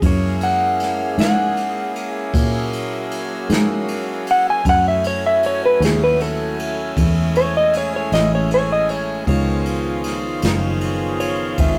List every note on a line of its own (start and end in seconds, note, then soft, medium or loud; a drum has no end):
0.01 1.14 F#2 medium
0.01 2.31 G#3 medium
0.01 4.60 A#3 medium
0.01 4.62 A#3 medium
0.01 4.62 C#4 medium
0.01 9.23 E4 medium
0.01 4.62 E4 medium
0.01 2.31 G#4 medium
0.01 4.62 G#4 medium
0.01 kick loud
0.01 ride medium
0.06 0.42 C#5 medium
0.41 1.17 F#5 medium
0.41 ride medium
0.80 snare soft
0.80 ride medium
1.18 2.30 G#2 medium
1.18 3.46 F#5 medium
1.18 snare loud
1.18 ride medium
1.57 ride medium
1.96 ride medium
2.33 3.46 A#2 medium
2.33 4.62 F#3 medium
2.33 4.62 F#4 medium
2.33 kick loud
2.33 ride medium
2.73 ride medium
3.11 ride medium
3.50 4.61 G#2 medium
3.50 snare loud
3.50 ride medium
3.88 ride medium
4.27 ride medium
4.31 4.47 F#5 medium
4.50 4.66 G#5 medium
4.65 5.77 F#2 medium
4.65 6.94 F#3 medium
4.65 9.23 A3 medium
4.65 9.24 A3 medium
4.65 9.24 C#4 medium
4.65 9.23 E4 medium
4.65 6.94 F#4 medium
4.65 9.23 G#5 medium
4.65 kick loud
4.65 ride medium
4.69 4.86 F#5 medium
4.88 5.05 E5 medium
5.04 5.24 C#5 medium
5.04 ride medium
5.26 5.43 E5 medium
5.43 5.63 C#5 medium
5.43 ride medium
5.66 5.82 B4 medium
5.80 6.92 D#2 medium
5.80 ride medium
5.85 6.01 G#4 medium
5.85 snare loud
6.04 6.20 B4 medium
6.20 6.58 A4 medium
6.20 ride medium
6.59 ride medium
6.97 8.09 E2 medium
6.97 9.25 G#3 medium
6.97 9.25 G#4 medium
6.97 kick loud
6.97 ride medium
7.35 7.54 C#5 medium
7.35 ride medium
7.57 7.74 D#5 medium
7.73 7.94 C#5 medium
7.73 ride medium
7.96 8.13 C#5 medium
8.12 9.24 A1 medium
8.12 8.31 D#5 medium
8.12 snare medium
8.12 ride medium
8.35 8.52 C#5 medium
8.51 8.71 C#5 loud
8.51 ride medium
8.72 8.90 D#5 medium
8.89 9.27 C#5 medium
8.89 ride medium
9.26 10.39 C#2 medium
9.26 11.79 D#3 medium
9.26 11.79 F3 medium
9.26 11.79 B3 medium
9.26 11.79 C#4 medium
9.26 11.79 F4 medium
9.26 11.79 G#4 medium
9.26 9.66 C#5 medium
9.26 kick medium
9.26 ride medium
9.66 ride medium
10.04 snare soft
10.04 ride medium
10.42 11.55 F#1 medium
10.42 snare loud
10.42 ride medium
10.81 ride medium
11.20 11.57 C#5 loud
11.20 ride medium
11.58 11.79 G#1 medium
11.58 11.79 E5 medium
11.58 kick loud
11.58 ride medium